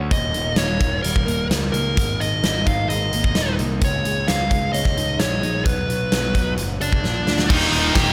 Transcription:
Already playing: D2 F#2 C#4 F#4
0.11 D#1 D#2 D#5, kick, closed hi-hat
0.34 D#1 D#3, closed hi-hat
0.56 D#1 A#3 C#5, snare, closed hi-hat
0.80 D#3, kick, closed hi-hat
1.02 D#1 G3 A#4, closed hi-hat
1.16 kick
1.26 D#1 A#3, closed hi-hat
1.49 C#2 D#4, snare, closed hi-hat
1.72 C#2 A#3 A#4, closed hi-hat
1.97 G#1 G#2, kick, closed hi-hat
2.20 G#1 D#3 D#5, closed hi-hat
2.43 G#1 A#3, snare, closed hi-hat
2.67 G#1 D#3 F5, kick, closed hi-hat
2.89 G#1 G#3 D#5, closed hi-hat
3.13 G#1 A#3, closed hi-hat
3.24 kick
3.35 D#1 D#4, snare, closed hi-hat
3.59 C2 A#3, closed hi-hat
3.81 C#2 C#3 C#5, kick, closed hi-hat
4.05 C#2 G#3, closed hi-hat
4.28 C#2 D#4 F5, snare, closed hi-hat
4.50 C#2 G#3, kick, closed hi-hat
4.73 C#2 C#4 D#5, closed hi-hat
4.85 kick, snare
4.96 C#2 D#4, closed hi-hat
5.19 A#1 G#4 C#5, snare, closed hi-hat
5.43 A#1 D#4, closed hi-hat
5.65 B1 B2 B4, kick, closed hi-hat
5.89 B1 F#3, closed hi-hat
6.12 B1 D#4, snare, closed hi-hat
6.35 B1 F#3, kick, closed hi-hat
6.57 F#1 F#2, closed hi-hat
6.80 F#1 C#4 D4 D5, closed hi-hat
6.93 kick
7.03 A#1 A#2, snare
7.27 D2 D4, snare
7.39 snare
7.49 D#1 D#2 A#2 D#3 G3 A#3 D#4 D#5, kick, crash
7.61 snare
7.71 D#1 G3 A#3 D#4, open hi-hat
7.75 D#3
7.94 D#1 D#3 G3 A#3 G4 G5, kick, snare, open hi-hat
7.98 D#4

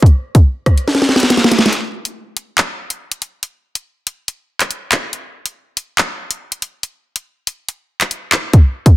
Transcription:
0.02 kick, closed hi-hat
0.35 kick, closed hi-hat
0.66 kick, cross-stick, closed hi-hat
0.78 closed hi-hat
0.88 snare
0.95 snare
1.02 snare
1.09 snare
1.16 snare
1.20 snare, closed hi-hat
1.30 snare, closed hi-hat
1.37 snare
1.44 snare
1.51 snare, closed hi-hat
1.58 snare
1.66 snare
1.73 closed hi-hat
2.05 closed hi-hat
2.37 closed hi-hat
2.58 clap, closed hi-hat
2.90 closed hi-hat
3.12 closed hi-hat
3.22 closed hi-hat
3.43 closed hi-hat
3.75 closed hi-hat
4.07 closed hi-hat
4.28 closed hi-hat
4.60 clap, closed hi-hat
4.71 closed hi-hat
4.92 clap, closed hi-hat
5.13 closed hi-hat
5.46 closed hi-hat
5.77 closed hi-hat
5.98 clap, closed hi-hat
6.31 closed hi-hat
6.52 closed hi-hat
6.62 closed hi-hat
6.83 closed hi-hat
7.16 closed hi-hat
7.47 closed hi-hat
7.69 closed hi-hat
8.01 clap, closed hi-hat
8.11 closed hi-hat
8.32 clap, closed hi-hat
8.53 kick, closed hi-hat
8.86 kick, closed hi-hat

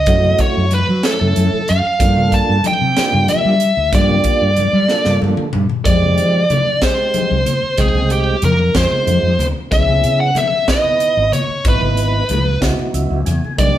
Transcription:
Already playing: D#5
0.06 F#2 A3 C#4 E4 F#4, kick, closed hi-hat, high conga
0.24 low conga
0.39 C#5, kick, closed hi-hat, low conga
0.57 F#2
0.71 B4, closed hi-hat, high conga
0.89 F#3
1.03 A3 C#4 E4 A4, snare, closed hi-hat
1.21 F#2, low conga
1.36 F#2, closed hi-hat, high conga
1.53 muted fretless electric bass stroke, low conga
1.68 F#2 F5, closed hi-hat, low conga
1.85 muted fretless electric bass stroke
1.99 G2 A#3 D4 F4 A4, kick, closed hi-hat, high conga
2.16 low conga
2.32 A5, kick, closed hi-hat, low conga
2.49 G2
2.64 G5, closed hi-hat, high conga
2.81 C3
2.96 A#3 D4 F4 G4, muted fretless electric bass stroke, snare, closed hi-hat
3.13 G2, low conga
3.28 E5, closed hi-hat, high conga
3.45 G3, low conga
3.60 closed hi-hat, low conga
3.77 D2
3.92 G2 A#3 D4 F4 G4 D5, kick, closed hi-hat, high conga, low conga
4.10 low conga
4.24 kick, closed hi-hat
4.42 G2, low conga
4.56 closed hi-hat, high conga, low conga
4.73 G3
4.88 A#3 D4 F4 A4, snare, low conga
5.05 G2, snare, low conga
5.22 G2, high conga
5.37 muted fretless electric bass stroke, mid tom
5.53 G2, mid tom
5.70 muted fretless electric bass stroke, floor tom
5.85 F2 G#3 C4 D#4 G4 D5, kick, closed hi-hat, high conga, low conga
6.02 low conga
6.18 F3, closed hi-hat
6.35 low conga
6.50 closed hi-hat, high conga, low conga
6.67 low conga
6.82 G#3 C4 D#4 G4 C5, kick, snare, closed hi-hat, low conga
7.14 closed hi-hat, high conga, low conga
7.31 C2
7.46 closed hi-hat, low conga
7.63 muted fretless electric bass stroke
7.77 C2 G#3 C4 D#4 G#4 G5, kick, closed hi-hat, high conga, low conga
7.94 C2, low conga
8.10 G4, closed hi-hat
8.42 F2 A#4, closed hi-hat, high conga, low conga
8.60 low conga
8.74 F2 G#3 C4 D#4 F4 C5, kick, snare, closed hi-hat, low conga
8.91 muted fretless electric bass stroke, low conga
9.07 F2, closed hi-hat, high conga, low conga
9.23 F2
9.39 D2, closed hi-hat, low conga
9.71 C#2 B3 C#4 E4 G#4 E5, kick, closed hi-hat, high conga, low conga
9.87 low conga
10.04 C#3, closed hi-hat
10.20 F#5, low conga
10.35 E5, closed hi-hat, high conga, low conga
10.51 low conga
10.68 B3 D#4 E4 B4 D#5, kick, snare, closed hi-hat, low conga
10.84 low conga
11.00 closed hi-hat, low conga
11.17 G#1
11.32 C#5, closed hi-hat, low conga
11.49 muted fretless electric bass stroke
11.65 G#1 B3 D#4 E4 B4, kick, closed hi-hat, high conga, low conga
11.81 G#1, low conga
11.97 closed hi-hat
12.29 C#2, closed hi-hat, high conga, low conga
12.47 low conga
12.61 C#2 B3 D#4 E4 F#4, kick, snare, closed hi-hat, low conga
12.79 low conga
12.94 C#2 E5, closed hi-hat, high conga
13.10 C#2, high conga
13.26 E2 G#5, closed hi-hat, low conga
13.44 low conga
13.57 C2 A#3 D4 D#4 G4 D5, kick, closed hi-hat, high conga, low conga

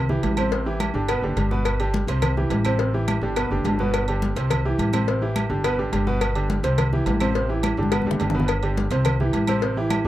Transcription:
Already playing: C2
0.09 E3 E4 G4, high conga, low conga
0.23 A1, cowbell, high conga, low timbale, low agogo
0.37 C3 C4 C5, cowbell, high conga, low agogo, claves
0.52 C3 C4 C5, cowbell
0.66 E3 E4 G4, high conga
0.80 cowbell, high conga, low agogo, claves
0.94 G1 D3 D4 G4, high conga
1.08 B2 B3 B4, cowbell, high conga, low agogo, claves
1.22 F#1 D3 D4 G4, high conga
1.36 G1 D3 D4 G4, cowbell, high conga, low agogo
1.51 B2 B3 B4, high conga
1.65 cowbell, low agogo, claves
1.80 D3 D4 G4, high conga, low agogo
1.94 cowbell, high conga
2.07 C2 C3 C4 C5, cowbell, low agogo
2.22 cowbell, high conga, low conga, low agogo, claves
2.37 E3 E4 G4, high conga, low conga
2.50 A1, cowbell, high conga, low timbale, low agogo
2.65 C3 C4 C5, cowbell, high conga, low agogo, claves
2.79 C3 C4 C5, cowbell, high conga
2.94 E3 E4 G4, high conga
3.08 cowbell, high conga, low agogo, claves
3.21 G1 D3 D4 G4, high conga
3.36 B2 B3 B4, cowbell, high conga, low agogo, claves
3.50 F#1 D3 D4 G4, high conga
3.64 G1 D3 D4 G4, cowbell, high conga, low timbale, low agogo
3.79 B2 B3 B4, high conga
3.93 cowbell, high conga, low agogo, claves
4.08 D3 D4 G4, high conga, low agogo
4.22 cowbell, high conga
4.36 C2 C3 C4 C5, cowbell, low agogo
4.50 cowbell, high conga, low conga, low agogo, claves
4.65 E3 E4 G4, high conga
4.78 A1, cowbell, high conga, low agogo
4.93 C3 C4 C5, cowbell, high conga, low agogo, claves
5.07 C3 C4 C5, cowbell, high conga
5.22 E3 E4 G4, high conga
5.36 cowbell, high conga, low agogo, claves
5.50 G1 D3 D4 G4, high conga
5.64 B2 B3 B4, cowbell, high conga, low agogo, claves
5.78 D3 D4 G4, high conga
5.92 G1 D3 D4 G4, cowbell, high conga, low agogo
6.07 B2 B3 B4, high conga
6.21 cowbell, high conga, low agogo, claves
6.35 D3 D4 G4, high conga, low agogo
6.50 cowbell, high conga
6.63 C2 C3 C4 C5, cowbell, high conga, low agogo
6.78 cowbell, high conga, low conga, low agogo, claves
6.93 E3 E4 G4, high conga, low conga
7.06 A1, cowbell, high conga, low timbale, low agogo
7.20 C3 C4 C5, cowbell, high conga, low agogo, claves
7.35 C3 C4 C5, cowbell
7.49 E3 E4 G4, high conga
7.63 cowbell, high conga, low agogo, claves
7.77 G1 D3 D4 G4
7.83 high conga
7.92 B2 B3 B4, cowbell, high bongo, high conga, low agogo, claves
8.02 F#1, high conga
8.06 D3 D4 G4
8.11 high bongo, low conga
8.20 G1 D3 D4 G4, cowbell, low conga, low timbale, low agogo
8.30 low bongo, low conga
8.34 B2 B3 B4
8.39 low bongo, low conga
8.48 cowbell, low agogo, claves
8.63 D3 D4 G4, high conga, low agogo
8.77 cowbell, high conga
8.91 C2 C3 C4 C5, cowbell, low agogo
9.05 cowbell, high conga, low conga, low agogo, claves
9.20 E3 E4 G4, high conga, low conga
9.33 A1, cowbell, high conga, low agogo
9.47 C3 C4 C5, cowbell, high conga, low agogo, claves
9.62 C3 C4 C5, cowbell
9.77 E3 E4 G4, high conga
9.90 cowbell, high conga, low agogo, claves
10.04 G1

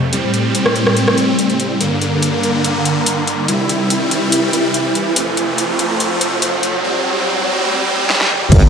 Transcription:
Already playing: F2 A3, riser
0.13 A2 G3 C4, closed hi-hat
0.34 closed hi-hat
0.55 closed hi-hat
0.66 cross-stick
0.76 closed hi-hat
0.87 cross-stick
0.97 closed hi-hat
1.08 cross-stick
1.18 closed hi-hat
1.39 closed hi-hat
1.50 closed hi-hat
1.60 closed hi-hat
1.80 G2 D3 A#3, closed hi-hat
2.02 closed hi-hat
2.22 closed hi-hat
2.43 closed hi-hat
2.64 closed hi-hat
2.85 closed hi-hat
3.06 closed hi-hat
3.27 closed hi-hat
3.48 C3 G3 E4, closed hi-hat
3.69 closed hi-hat
3.90 closed hi-hat
4.11 closed hi-hat
4.32 closed hi-hat
4.53 closed hi-hat
4.74 closed hi-hat
4.95 closed hi-hat
5.16 F2 C3 A3, closed hi-hat
5.37 closed hi-hat
5.58 closed hi-hat
5.79 closed hi-hat
6.00 closed hi-hat
6.21 closed hi-hat
6.42 closed hi-hat
6.63 closed hi-hat
6.84 A2 G3 C4
8.10 snare
8.21 snare
8.31 mid tom
8.42 mid tom
8.52 G1 G3 D4 A#4, kick, closed hi-hat, crash, impact

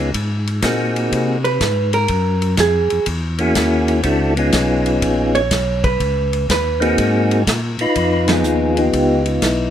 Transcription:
Already playing: C#2 B3 C#4 D#4 F4 G#4
0.14 G#2, kick, ride
0.47 ride
0.62 A#2 A#3 C4 D#4 F#4 G#4, kick, snare, hi-hat pedal, ride
0.96 ride
1.12 C3, kick, ride
1.44 B4, ride
1.60 G#2, kick, snare, hi-hat pedal, ride
1.93 A#4, ride
2.08 F#2, kick, ride
2.42 ride
2.57 F2 G#4, kick, snare, hi-hat pedal, ride
2.90 F2, ride
3.06 E2, kick, ride
3.38 A#3 C#4 E4 F#4 G#4, ride
3.55 D#2, kick, snare, hi-hat pedal, ride
3.88 ride
4.03 C#2 C4 D4 E4 F#4 A4, kick, ride
4.37 B3 C#4 D#4 F4 G#4, ride
4.52 B1, kick, snare, hi-hat pedal, ride
4.86 ride
5.02 A#1, kick, ride
5.35 C#5, ride
5.51 B1, kick, snare, hi-hat pedal, ride
5.84 B4, kick, ride
6.00 C#2, kick, ride
6.33 ride
6.49 D#2 B4, kick, snare, hi-hat pedal, ride
6.80 A#3 C4 D#4 F#4 G#4, ride
6.98 G#2, kick, ride
7.31 ride
7.47 A#2, kick, snare, hi-hat pedal, ride
7.78 A#2 D#4 F4 B4, ride
7.95 F2, kick, ride
8.28 F3 B3 D#4 F4, snare, ride
8.32 G#4
8.43 D#2, hi-hat pedal
8.77 B3 D#4 G4, ride
8.93 C#2, kick, ride
9.26 F4, ride
9.42 B1 E4, kick, snare, hi-hat pedal, ride

